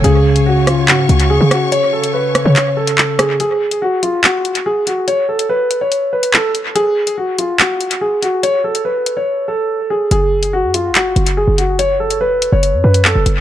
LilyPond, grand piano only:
\new Staff \with { instrumentName = "Grand piano" } { \time 4/4 \key cis \phrygian \tempo 4 = 143 gis'4 fis'8 eis'8 fis'4 gis'8 fis'8 | cis''8 a'8 b'8. cis''8. a'4 gis'8 | gis'4 fis'8 eis'8 fis'4 gis'8 fis'8 | cis''8 a'8 b'8. cis''8. b'8 a'8 r8 |
gis'4 fis'8 eis'8 fis'4 gis'8 fis'8 | cis''8 a'8 b'8. cis''8. a'4 gis'8 | gis'4 fis'8 eis'8 fis'4 gis'8 fis'8 | cis''8 a'8 b'8. cis''8. b'8 a'8 r8 | }